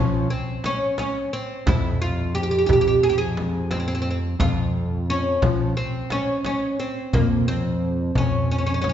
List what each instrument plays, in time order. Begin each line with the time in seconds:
Already playing: analog synth bass F3, oud C#4
0.13 darbuka ka
0.30 oud C4, darbuka ka
0.64 oud C#4, darbuka tek, frame drum
0.98 oud C#4, darbuka tek, frame drum
1.33 oud C4
1.66 analog synth bass F2, oud E4, darbuka dum, frame drum
2.02 oud F4
2.18 darbuka ka
2.35 oud G4
2.43 oud G4
2.51 oud G4, darbuka ka
2.58 oud G4
2.66 analog synth bass F2, oud G4, frame drum, darbuka dum
2.73 oud G4
2.81 oud G4
2.87 oud G4, darbuka ka
3.03 oud G#4, darbuka ka
3.09 oud G4
3.18 oud G#4
3.37 darbuka tek, frame drum
3.55 darbuka ka
3.71 oud C4, darbuka tek, frame drum
3.80 oud C4
3.88 oud C4
3.95 oud C4
4.02 oud C4
4.11 oud C4
4.39 analog synth bass F2, oud F4, frame drum, darbuka dum
4.75 darbuka ka
5.10 oud C#4
5.42 analog synth bass F3, frame drum, darbuka dum
5.60 darbuka ka
5.77 oud C4, darbuka ka
6.10 oud C#4, darbuka tek, frame drum
6.45 oud C#4, darbuka tek, frame drum
6.79 oud C4, darbuka ka
7.13 analog synth bass F2, oud A#3, darbuka dum, frame drum
7.48 oud C4, darbuka ka
7.99 darbuka ka
8.15 analog synth bass F2, oud C#4, frame drum, darbuka dum
8.33 darbuka ka
8.51 oud C#4
8.58 oud C#4
8.67 oud C#4
8.74 oud C#4
8.82 oud C#4, darbuka tek, frame drum
8.89 oud C#4